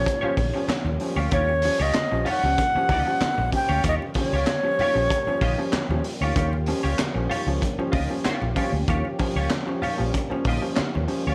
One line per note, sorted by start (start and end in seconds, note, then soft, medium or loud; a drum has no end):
0.00 11.35 F3 medium
0.00 11.35 A#3 medium
0.00 11.35 C#4 medium
0.00 11.35 G4 loud
0.00 1.00 C#5 loud
0.06 muted clean electric guitar stroke soft
0.06 kick medium
0.06 closed hi-hat medium
0.21 0.36 F3 medium
0.21 0.36 G3 medium
0.21 0.36 C#4 medium
0.21 0.35 F4 medium
0.21 0.37 G4 medium
0.21 0.37 C#5 medium
0.21 muted fingered electric bass stroke soft
0.21 muted conga soft
0.37 0.50 A#1 medium
0.37 0.53 D#3 medium
0.37 muted clean electric guitar stroke soft
0.37 kick medium
0.37 open hi-hat medium
0.37 high conga medium
0.54 0.67 F3 medium
0.54 0.67 G3 medium
0.54 0.67 C#4 medium
0.54 muted clean electric guitar stroke soft
0.68 0.84 D#3 soft
0.68 muted fingered electric bass stroke soft
0.68 muted clean electric guitar stroke soft
0.68 snare loud
0.68 clap loud
0.68 closed hi-hat medium
0.68 muted conga soft
0.68 high conga medium
0.85 0.96 D#2 medium
0.85 muted clean electric guitar stroke soft
0.85 muted conga soft
0.85 low conga medium
1.00 1.15 F3 medium
1.00 1.15 G3 medium
1.00 1.15 C#4 medium
1.00 open hi-hat medium
1.16 1.28 D2 medium
1.16 1.24 G3 soft
1.16 1.24 C#4 soft
1.16 1.30 F4 medium
1.16 1.31 G4 medium
1.16 1.32 C#5 medium
1.31 1.68 D#2 loud
1.31 1.47 D#3 medium
1.31 1.52 F4 medium
1.31 1.49 G4 medium
1.31 1.83 C#5 medium
1.31 1.47 C#5 medium
1.31 kick loud
1.31 closed hi-hat medium
1.31 low conga medium
1.48 1.55 G3 soft
1.48 1.55 C#4 soft
1.48 muted clean electric guitar stroke soft
1.48 muted conga soft
1.62 1.78 F3 medium
1.62 1.78 G3 medium
1.62 1.78 C#4 medium
1.62 muted clean electric guitar stroke soft
1.62 open hi-hat medium
1.80 1.91 C#2 medium
1.80 1.95 F4 medium
1.80 1.95 G4 medium
1.80 1.94 C#5 medium
1.80 2.28 D#5 medium
1.94 snare loud
1.94 clap medium
1.94 closed hi-hat medium
1.94 muted conga soft
1.94 high conga medium
2.11 2.23 A#1 medium
2.11 2.24 F3 medium
2.11 2.24 G3 medium
2.11 2.25 C#4 medium
2.11 muted clean electric guitar stroke soft
2.25 2.41 D#3 medium
2.25 2.46 F4 medium
2.25 2.43 G4 medium
2.25 2.42 C#5 medium
2.25 open hi-hat medium
2.25 low conga medium
2.30 3.50 F#5 loud
2.43 2.54 C#2 medium
2.43 2.56 F3 medium
2.43 2.56 G3 medium
2.43 2.57 C#4 medium
2.43 muted clean electric guitar stroke medium
2.58 muted clean electric guitar stroke medium
2.58 kick medium
2.58 closed hi-hat medium
2.75 2.88 F3 medium
2.75 2.88 G3 medium
2.75 2.88 C#4 medium
2.75 muted fingered electric bass stroke soft
2.75 muted clean electric guitar stroke soft
2.89 3.02 C#2 medium
2.89 3.04 D#3 medium
2.89 3.11 F4 medium
2.89 3.06 G4 medium
2.89 3.05 D#5 medium
2.89 kick medium
2.89 open hi-hat medium
2.89 high conga medium
3.06 3.19 F3 medium
3.06 3.19 G3 medium
3.06 3.20 C#4 medium
3.06 muted clean electric guitar stroke medium
3.21 3.36 D#3 medium
3.21 muted fingered electric bass stroke soft
3.21 muted clean electric guitar stroke soft
3.21 snare loud
3.21 clap loud
3.21 closed hi-hat medium
3.21 muted conga soft
3.21 high conga medium
3.38 3.49 A#1 medium
3.38 muted clean electric guitar stroke soft
3.38 low conga medium
3.52 3.67 F3 medium
3.52 3.67 G3 medium
3.52 3.67 C#4 medium
3.52 3.84 G5 loud
3.52 kick medium
3.52 open hi-hat medium
3.69 3.80 D2 medium
3.69 3.76 G3 soft
3.69 3.76 C#4 soft
3.69 3.83 F4 medium
3.69 3.84 G4 medium
3.69 3.85 C#5 medium
3.84 3.96 D#2 medium
3.84 3.98 D#3 medium
3.84 4.04 F4 medium
3.84 4.02 G4 medium
3.84 4.01 C#5 medium
3.84 kick loud
3.84 closed hi-hat medium
3.84 muted conga soft
3.84 low conga medium
3.88 3.95 D#5 loud
4.01 4.07 G3 soft
4.01 4.07 C#4 soft
4.01 muted clean electric guitar stroke soft
4.01 muted conga soft
4.14 4.30 F3 medium
4.14 4.30 G3 medium
4.14 4.30 C#4 medium
4.14 muted clean electric guitar stroke soft
4.14 kick medium
4.14 open hi-hat medium
4.14 high conga medium
4.19 6.02 C#5 loud
4.33 4.44 C#2 medium
4.33 4.48 F4 medium
4.33 4.48 G4 medium
4.33 4.47 C#5 medium
4.46 snare loud
4.46 clap loud
4.46 closed hi-hat medium
4.46 muted conga soft
4.46 high conga medium
4.63 4.76 F3 medium
4.63 4.76 G3 medium
4.63 4.76 C#4 medium
4.63 muted clean electric guitar stroke soft
4.63 muted conga soft
4.79 4.93 D#3 medium
4.79 4.99 F4 medium
4.79 4.97 G4 medium
4.79 4.95 C#5 loud
4.79 muted fingered electric bass stroke soft
4.79 open hi-hat medium
4.79 low conga medium
4.95 5.06 A#1 medium
4.95 5.07 F3 medium
4.95 5.08 G3 medium
4.95 5.08 C#4 medium
4.95 muted clean electric guitar stroke medium
5.10 muted clean electric guitar stroke soft
5.10 kick medium
5.10 closed hi-hat loud
5.10 muted conga soft
5.27 5.39 F3 medium
5.27 5.39 G3 medium
5.27 5.39 C#4 medium
5.27 muted fingered electric bass stroke soft
5.27 muted clean electric guitar stroke soft
5.27 muted conga soft
5.41 5.54 A#1 medium
5.41 5.56 D#3 medium
5.41 5.62 F4 medium
5.41 5.59 G4 medium
5.41 5.59 D#5 medium
5.41 kick loud
5.41 open hi-hat medium
5.41 high conga medium
5.58 5.71 F3 medium
5.58 5.71 G3 medium
5.58 5.71 C#4 medium
5.58 muted clean electric guitar stroke soft
5.73 muted fingered electric bass stroke soft
5.73 muted clean electric guitar stroke soft
5.73 snare loud
5.73 clap loud
5.73 closed hi-hat medium
5.73 muted conga soft
5.73 high conga medium
5.89 6.00 D#2 medium
5.89 6.02 F3 medium
5.89 6.03 G3 medium
5.89 6.03 C#4 medium
5.89 muted clean electric guitar stroke soft
5.89 muted conga soft
5.89 low conga medium
6.04 open hi-hat medium
6.21 6.32 D2 medium
6.21 6.34 D#3 medium
6.21 6.35 F4 medium
6.21 6.36 G4 medium
6.21 6.36 C#5 medium
6.36 6.71 D#2 loud
6.36 6.50 D#3 medium
6.36 6.56 F4 medium
6.36 6.53 G4 medium
6.36 6.51 C#5 medium
6.36 kick loud
6.36 closed hi-hat medium
6.36 muted conga soft
6.36 low conga medium
6.52 6.59 G3 soft
6.52 6.59 C#4 soft
6.52 muted clean electric guitar stroke soft
6.52 muted conga soft
6.66 6.81 F3 medium
6.66 6.82 G3 medium
6.66 6.82 C#4 medium
6.66 muted clean electric guitar stroke soft
6.66 open hi-hat medium
6.83 6.95 C#2 medium
6.83 6.99 F4 medium
6.83 6.98 G4 medium
6.83 6.98 C#5 medium
6.98 snare loud
6.98 clap loud
6.98 closed hi-hat medium
6.98 muted conga soft
6.98 high conga medium
7.15 7.26 A#1 medium
7.15 7.28 F3 medium
7.15 7.28 G3 medium
7.15 7.28 C#4 medium
7.15 muted clean electric guitar stroke soft
7.30 7.44 D#3 medium
7.30 7.50 F4 medium
7.30 7.47 G4 medium
7.30 7.46 C#5 medium
7.30 open hi-hat medium
7.30 low conga medium
7.46 7.58 C#2 medium
7.46 7.60 F3 medium
7.46 7.59 G3 medium
7.46 7.60 C#4 medium
7.46 muted clean electric guitar stroke medium
7.61 muted clean electric guitar stroke soft
7.61 kick medium
7.61 closed hi-hat medium
7.61 muted conga soft
7.78 7.91 F3 medium
7.78 7.91 G3 medium
7.78 7.91 C#4 medium
7.78 muted fingered electric bass stroke soft
7.78 muted clean electric guitar stroke soft
7.78 muted conga soft
7.92 8.06 C#2 loud
7.92 8.07 D#3 medium
7.92 8.12 F4 medium
7.92 8.10 G4 medium
7.92 8.09 D#5 medium
7.92 kick medium
7.92 open hi-hat medium
7.92 high conga medium
8.09 8.22 F3 medium
8.09 8.22 G3 medium
8.09 8.23 C#4 medium
8.09 muted clean electric guitar stroke soft
8.24 8.39 D#3 medium
8.24 8.45 F4 medium
8.24 8.41 G4 medium
8.24 8.41 C#5 loud
8.24 muted fingered electric bass stroke soft
8.24 snare loud
8.24 clap medium
8.24 closed hi-hat medium
8.24 muted conga soft
8.24 high conga medium
8.42 8.53 A#1 medium
8.42 muted clean electric guitar stroke soft
8.42 muted conga soft
8.42 low conga medium
8.56 8.70 F3 medium
8.56 8.71 G3 medium
8.56 8.71 C#4 medium
8.56 8.72 F4 medium
8.56 8.73 G4 medium
8.56 8.72 C#5 medium
8.56 kick medium
8.56 open hi-hat medium
8.72 8.84 D2 medium
8.72 8.79 G3 soft
8.72 8.79 C#4 soft
8.72 muted clean electric guitar stroke soft
8.88 9.00 D#2 loud
8.88 9.02 D#3 medium
8.88 9.08 F4 medium
8.88 9.06 G4 medium
8.88 9.04 C#5 loud
8.88 kick loud
8.88 closed hi-hat medium
8.88 low conga medium
9.05 9.11 G3 soft
9.05 9.11 C#4 soft
9.05 muted clean electric guitar stroke soft
9.05 muted conga soft
9.19 9.33 F3 medium
9.19 9.33 G3 medium
9.19 9.33 C#4 medium
9.19 muted clean electric guitar stroke soft
9.19 kick loud
9.19 open hi-hat medium
9.35 9.47 C#2 medium
9.35 9.51 F4 medium
9.35 9.51 G4 medium
9.35 9.50 C#5 medium
9.50 snare loud
9.50 clap medium
9.50 closed hi-hat loud
9.50 muted conga soft
9.50 high conga medium
9.66 9.79 F3 medium
9.66 9.79 G3 medium
9.66 9.80 C#4 medium
9.66 muted clean electric guitar stroke soft
9.66 muted conga soft
9.82 9.96 D#3 medium
9.82 10.02 F4 medium
9.82 10.01 G4 medium
9.82 10.00 C#5 medium
9.82 muted fingered electric bass stroke soft
9.82 open hi-hat medium
9.82 low conga medium
9.98 10.10 A#1 medium
9.98 10.11 F3 medium
9.98 10.11 G3 medium
9.98 10.11 C#4 medium
9.98 muted clean electric guitar stroke medium
10.14 muted clean electric guitar stroke soft
10.14 kick loud
10.14 closed hi-hat loud
10.14 muted conga soft
10.30 10.42 F3 medium
10.30 10.43 G3 medium
10.30 10.43 C#4 medium
10.30 muted fingered electric bass stroke soft
10.30 muted clean electric guitar stroke soft
10.30 muted conga soft
10.45 10.57 A#1 medium
10.45 10.59 D#3 medium
10.45 10.66 F4 medium
10.45 10.64 G4 medium
10.45 kick medium
10.45 open hi-hat medium
10.45 high conga medium
10.49 10.64 D#5 medium
10.61 10.74 F3 medium
10.61 10.74 G3 medium
10.61 10.74 C#4 medium
10.61 muted clean electric guitar stroke soft
10.77 10.91 D#3 medium
10.77 muted clean electric guitar stroke soft
10.77 muted fingered electric bass stroke medium
10.77 snare loud
10.77 clap medium
10.77 closed hi-hat medium
10.77 muted conga soft
10.77 high conga medium
10.95 11.06 D#2 medium
10.95 muted clean electric guitar stroke soft
10.95 muted conga soft
10.95 low conga medium
11.08 11.22 F3 medium
11.08 11.22 G3 medium
11.08 11.22 C#4 medium
11.08 open hi-hat medium
11.25 11.35 D2 medium
11.25 11.31 G3 soft
11.25 11.31 C#4 soft
11.25 11.35 G4 medium
11.25 11.35 C#5 medium
11.29 11.35 F4 medium